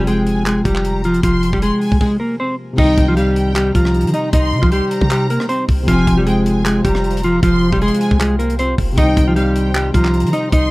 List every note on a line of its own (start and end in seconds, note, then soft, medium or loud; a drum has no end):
0.00 0.62 F1 loud
0.00 2.72 C3 medium
0.00 2.73 F3 medium
0.00 2.75 C4 medium
0.00 2.77 F4 medium
0.07 0.44 G#3 medium
0.07 0.44 G#4 medium
0.07 0.26 G5 medium
0.07 closed hi-hat medium
0.27 0.63 G#5 medium
0.27 closed hi-hat medium
0.46 0.62 G#3 medium
0.46 0.61 G#4 medium
0.46 clap loud
0.46 closed hi-hat medium
0.65 1.21 F1 loud
0.65 1.02 G3 medium
0.65 1.02 G4 medium
0.65 1.20 A#5 medium
0.65 kick loud
0.65 closed hi-hat medium
0.76 clap medium
0.85 closed hi-hat medium
1.04 1.20 F3 medium
1.04 1.20 F4 medium
1.04 closed hi-hat medium
1.14 closed hi-hat medium
1.23 1.52 F1 loud
1.23 1.52 F3 medium
1.23 1.52 F4 medium
1.23 1.60 C6 loud
1.23 kick loud
1.23 closed hi-hat loud
1.43 closed hi-hat medium
1.53 1.72 F1 loud
1.53 1.61 G3 medium
1.53 1.60 G4 medium
1.53 kick medium
1.62 1.99 G#3 medium
1.62 1.99 G#4 medium
1.62 1.81 C6 medium
1.62 closed hi-hat medium
1.81 2.00 G#5 medium
1.81 open hi-hat medium
1.92 2.00 C2 loud
1.92 kick medium
2.01 2.16 G#3 medium
2.01 2.16 G#4 medium
2.01 kick loud
2.01 crash medium
2.20 2.35 A#3 medium
2.20 2.35 A#4 medium
2.40 2.55 C4 medium
2.40 2.55 C5 medium
2.73 5.81 C3 medium
2.73 5.83 D#3 medium
2.78 2.97 C2 loud
2.78 5.85 G3 medium
2.78 3.06 D#4 loud
2.78 5.85 D#4 medium
2.78 10.71 C5 medium
2.78 3.06 D#5 medium
2.78 3.15 G5 loud
2.78 5.85 G5 medium
2.78 10.71 C6 medium
2.78 kick loud
2.78 crash loud
2.83 5.86 D#4 medium
2.98 3.72 C2 loud
2.98 kick loud
2.98 closed hi-hat medium
3.08 3.16 F3 medium
3.08 3.15 F4 medium
3.17 3.54 G3 medium
3.17 3.53 G4 medium
3.17 3.35 F5 medium
3.17 closed hi-hat medium
3.36 3.73 G5 medium
3.36 closed hi-hat medium
3.55 3.71 G3 medium
3.55 3.70 G4 medium
3.55 clap loud
3.55 closed hi-hat medium
3.75 4.06 C2 loud
3.75 4.12 F3 medium
3.75 4.12 F4 medium
3.75 4.30 A#5 medium
3.75 kick loud
3.75 closed hi-hat medium
3.85 cross-stick loud
3.94 closed hi-hat soft
4.01 4.13 D#3 loud
4.01 closed hi-hat medium
4.07 closed hi-hat medium
4.14 4.29 D#4 medium
4.14 4.29 D#5 medium
4.14 closed hi-hat medium
4.33 4.54 C2 loud
4.33 4.61 D#4 medium
4.33 4.61 D#5 medium
4.33 4.70 C6 loud
4.33 kick loud
4.33 closed hi-hat loud
4.52 4.62 C3 loud
4.62 4.81 C2 loud
4.62 4.70 F3 medium
4.62 4.69 F4 medium
4.62 kick loud
4.72 5.09 G3 medium
4.72 5.08 G4 medium
4.72 4.90 C6 medium
4.72 closed hi-hat medium
4.91 5.46 A#5 loud
4.91 closed hi-hat medium
5.01 5.39 C3 loud
5.01 kick medium
5.11 5.26 G3 medium
5.11 5.26 G4 medium
5.11 clap loud
5.11 closed hi-hat medium
5.30 5.46 A#3 medium
5.30 5.45 A#4 medium
5.30 closed hi-hat medium
5.40 cross-stick loud
5.49 5.64 C4 medium
5.49 5.64 C5 medium
5.49 closed hi-hat medium
5.69 5.87 C2 loud
5.69 kick loud
5.69 open hi-hat medium
5.83 8.91 C3 medium
5.83 8.93 F3 medium
5.88 6.07 F1 loud
5.88 6.16 F3 medium
5.88 8.95 C4 medium
5.88 6.16 F4 loud
5.88 8.95 F4 medium
5.88 8.95 F5 medium
5.88 6.24 G#5 loud
5.88 kick loud
5.88 closed hi-hat loud
5.93 8.96 F4 medium
6.07 6.82 F1 loud
6.07 kick loud
6.07 closed hi-hat medium
6.17 6.25 G3 medium
6.17 6.25 G4 medium
6.27 6.63 G#3 medium
6.27 6.63 G#4 medium
6.27 6.45 G5 medium
6.27 closed hi-hat medium
6.46 6.82 G#5 medium
6.46 closed hi-hat medium
6.66 6.81 G#3 medium
6.66 6.80 G#4 medium
6.66 clap loud
6.66 closed hi-hat medium
6.85 7.40 F1 loud
6.85 7.21 G3 medium
6.85 7.21 G4 medium
6.85 7.39 A#5 medium
6.85 kick loud
6.85 closed hi-hat medium
6.95 cross-stick loud
7.04 closed hi-hat soft
7.11 closed hi-hat medium
7.17 closed hi-hat medium
7.23 7.39 F3 medium
7.23 7.39 F4 medium
7.23 closed hi-hat medium
7.43 7.71 F1 loud
7.43 7.71 F3 medium
7.43 7.71 F4 medium
7.43 7.79 C6 loud
7.43 kick loud
7.43 closed hi-hat loud
7.73 7.91 F1 loud
7.73 7.80 G3 medium
7.73 7.79 G4 medium
7.73 kick loud
7.82 8.19 G#3 medium
7.82 8.18 G#4 loud
7.82 8.00 C6 loud
7.82 closed hi-hat soft
7.88 closed hi-hat medium
7.94 closed hi-hat medium
8.01 8.19 G#5 medium
8.01 closed hi-hat medium
8.11 8.76 C2 loud
8.11 kick medium
8.20 8.36 G#3 medium
8.20 8.35 G#4 medium
8.20 clap loud
8.20 closed hi-hat medium
8.39 8.55 A#3 medium
8.39 8.54 A#4 medium
8.39 closed hi-hat medium
8.50 closed hi-hat medium
8.59 8.74 C4 medium
8.59 8.74 C5 medium
8.59 closed hi-hat medium
8.78 8.97 F1 loud
8.78 kick loud
8.78 open hi-hat medium
8.92 10.71 C3 medium
8.92 10.71 D#3 medium
8.98 9.16 C2 loud
8.98 10.71 G3 medium
8.98 9.25 D#4 loud
8.98 10.71 D#4 medium
8.98 9.26 D#5 medium
8.98 9.34 G5 loud
8.98 10.71 G5 medium
8.98 kick loud
8.98 closed hi-hat loud
9.02 10.71 D#4 medium
9.17 9.91 C2 loud
9.17 kick loud
9.17 closed hi-hat medium
9.28 9.35 F3 medium
9.28 9.34 F4 medium
9.36 9.73 G3 medium
9.36 9.73 G4 medium
9.36 9.55 F5 medium
9.36 closed hi-hat medium
9.56 9.92 G5 medium
9.56 closed hi-hat medium
9.74 9.90 G3 medium
9.74 9.90 G4 medium
9.74 clap loud
9.74 closed hi-hat medium
9.94 10.25 C2 loud
9.94 10.31 F3 medium
9.94 10.31 F4 medium
9.94 10.49 A#5 medium
9.94 kick loud
9.94 closed hi-hat medium
10.05 cross-stick loud
10.05 clap medium
10.14 closed hi-hat soft
10.20 10.33 D#3 loud
10.20 closed hi-hat medium
10.27 closed hi-hat medium
10.33 10.48 D#4 medium
10.33 10.48 D#5 medium
10.33 closed hi-hat medium
10.52 10.71 C2 loud
10.52 10.71 D#4 loud
10.52 10.71 D#5 medium
10.52 10.71 C6 loud
10.52 kick loud
10.52 closed hi-hat loud